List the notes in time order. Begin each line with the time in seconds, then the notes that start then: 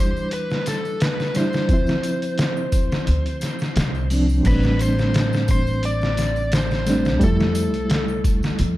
Already playing: E2 G3 D4 E4
0.00 C5
0.17 tambourine
0.31 B4, closed hi-hat, tambourine
0.50 snare, tambourine
0.66 A4, snare, closed hi-hat, tambourine
0.85 tambourine
1.00 B4, snare, closed hi-hat, tambourine
1.20 snare, tambourine
1.34 G3 D4 E4 C5, snare, closed hi-hat, tambourine
1.53 snare, tambourine
1.67 D2 F3 C4, kick, closed hi-hat, tambourine
1.73 E4
1.87 snare, tambourine
2.03 closed hi-hat, tambourine
2.22 C2, closed hi-hat, tambourine
2.38 snare, closed hi-hat, tambourine
2.57 tambourine, triangle
2.72 kick, closed hi-hat, tambourine
2.92 snare, tambourine
3.07 D2, closed hi-hat, tambourine
3.26 closed hi-hat, tambourine
3.41 snare, closed hi-hat, tambourine
3.59 snare, tambourine, triangle
3.76 C2, snare, closed hi-hat, tambourine
3.95 tambourine
4.10 F3 C4 D4, open hi-hat, tambourine
4.29 tambourine, triangle
4.43 A1 G3 A3, kick, closed hi-hat, crash, tambourine
4.47 C4 D4 B4
4.63 snare, tambourine
4.79 C5, closed hi-hat, tambourine
4.98 snare, tambourine
5.14 snare, closed hi-hat, tambourine
5.33 snare, tambourine, triangle
5.48 C5, kick, closed hi-hat, tambourine
5.67 tambourine
5.83 D5, closed hi-hat, tambourine
6.01 snare, tambourine
6.17 snare, closed hi-hat, tambourine
6.36 tambourine
6.52 C5, snare, closed hi-hat, tambourine
6.71 snare, tambourine
6.86 G3 A3 C4 D4, snare, closed hi-hat, tambourine
7.05 snare, tambourine
7.19 F2 G3 A3, kick, closed hi-hat, tambourine
7.24 E4 A4
7.40 snare, tambourine
7.55 closed hi-hat, tambourine
7.74 C2, closed hi-hat, tambourine
7.90 snare, closed hi-hat, tambourine
8.08 tambourine, triangle
8.24 kick, closed hi-hat, tambourine
8.43 snare, tambourine
8.59 F2, closed hi-hat, tambourine